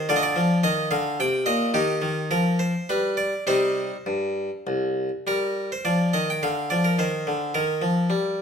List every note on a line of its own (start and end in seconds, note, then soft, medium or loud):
0.09 0.34 D3 medium
0.09 1.15 F4 medium
0.09 0.16 D5 loud
0.16 0.22 D#5 medium
0.23 0.57 D5 loud
0.36 0.62 F3 medium
0.63 0.90 D#3 medium
0.63 0.87 D#5 loud
0.91 1.17 D3 medium
0.91 1.19 F5 medium
1.20 1.45 C3 medium
1.20 1.47 G5 loud
1.46 1.72 A#2 medium
1.46 1.69 D#5 medium
1.74 2.00 D#3 medium
1.74 2.26 D#4 soft
1.74 2.22 G4 medium
2.02 2.29 D#3 medium
2.31 2.72 F3 medium
2.31 2.59 A#4 medium
2.59 2.88 C5 medium
2.89 3.32 G3 medium
2.89 3.14 B4 medium
3.17 3.43 D5 medium
3.47 3.89 C3 medium
3.47 3.95 G3 soft
3.47 3.95 D#4 soft
3.47 4.67 C5 medium
4.06 4.49 G2 soft
4.67 5.09 C2 soft
5.27 5.69 G3 medium
5.27 5.71 A#4 medium
5.72 5.86 C5 medium
5.85 6.13 F3 soft
5.85 6.14 D5 medium
6.13 6.41 D#3 soft
6.13 6.28 D#5 medium
6.30 6.44 G5 medium
6.43 6.70 D3 soft
6.43 6.71 F5 medium
6.70 6.98 F3 soft
6.70 6.85 D5 medium
6.84 6.99 A#4 medium
6.99 7.25 D#3 medium
6.99 7.55 C5 medium
7.27 7.54 D3 soft
7.54 7.82 D#3 medium
7.54 8.42 A#4 medium
7.82 8.09 F3 medium
8.10 8.42 G3 medium